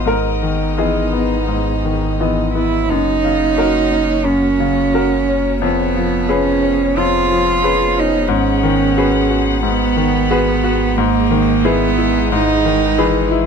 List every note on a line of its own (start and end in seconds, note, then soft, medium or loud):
0.00 2.90 G#1 medium
0.00 0.05 G#2 soft
0.00 0.11 D#3 soft
0.00 0.10 B3 soft
0.00 0.11 F4 soft
0.00 0.11 F#4 soft
0.00 0.10 B4 medium
0.00 0.10 D#5 soft
0.00 2.90 D#5 soft
0.05 1.45 G#2 soft
0.05 2.86 B3 soft
0.05 2.90 G#4 soft
0.05 0.75 A#4 medium
0.10 2.53 D#4 soft
0.42 1.00 D#3 soft
0.78 1.11 E3 soft
0.78 1.10 B3 soft
0.78 2.51 G#4 soft
0.78 1.11 D#5 soft
1.13 1.70 B3 soft
1.48 2.86 G#2 soft
1.85 2.41 D#3 soft
2.20 2.52 E3 soft
2.20 2.52 B3 soft
2.20 2.52 D#5 soft
2.54 2.90 B3 soft
2.54 2.91 E4 medium
2.89 5.64 F#1 medium
2.89 4.22 F#2 medium
2.89 5.59 A#3 soft
2.89 4.27 D#4 medium
2.89 5.58 F#4 soft
2.89 8.26 C#5 soft
3.24 3.79 C#3 soft
3.57 3.88 C#4 soft
3.57 3.89 F#4 soft
3.57 3.89 A#4 soft
3.91 4.46 C#4 soft
4.24 5.57 F#2 soft
4.24 5.62 C#4 medium
4.60 5.15 C#3 soft
4.94 5.25 C#4 soft
4.94 5.25 F#4 soft
4.94 5.25 A#4 soft
5.28 5.62 C#4 soft
5.62 8.31 F1 medium
5.62 6.92 F2 medium
5.62 6.33 B3 medium
5.62 10.99 B3 soft
5.62 10.97 G#4 soft
5.96 6.50 F3 soft
6.29 6.59 C#4 soft
6.29 7.00 C#4 medium
6.29 6.59 G#4 soft
6.29 6.60 B4 soft
6.62 7.16 C#4 soft
6.97 8.26 F2 soft
6.97 8.01 F4 medium
7.30 7.83 F3 soft
7.63 7.93 C#4 soft
7.63 7.94 G#4 soft
7.63 7.94 B4 soft
7.97 8.30 C#4 soft
7.97 8.32 D#4 medium
8.28 13.46 G#1 medium
8.28 9.59 G#2 medium
8.28 9.64 C#4 medium
8.28 10.97 F#5 soft
8.63 9.17 D#3 soft
8.97 9.27 F#4 soft
8.97 9.28 G#4 soft
8.97 9.28 B4 soft
9.30 9.84 F#4 soft
9.63 10.93 G#2 soft
9.63 10.98 B3 medium
9.96 10.50 D#3 soft
10.30 10.61 F#4 soft
10.30 10.61 G#4 soft
10.30 10.61 B4 medium
10.64 10.98 F#4 medium
10.96 12.28 G#2 medium
10.96 13.46 G#3 medium
10.96 11.67 A#3 medium
10.96 13.46 G#4 medium
10.96 13.46 D#5 medium
11.30 11.84 D#3 medium
11.64 12.34 B3 medium
11.64 11.95 E4 soft
11.64 11.95 G#4 soft
11.64 11.95 B4 medium
11.97 12.51 E4 soft
12.32 13.46 G#2 medium
12.32 13.32 D#4 medium
12.65 13.18 D#3 soft
12.98 13.28 E3 medium
12.98 13.28 G#4 medium
12.98 13.29 B4 medium
13.31 13.46 E4 medium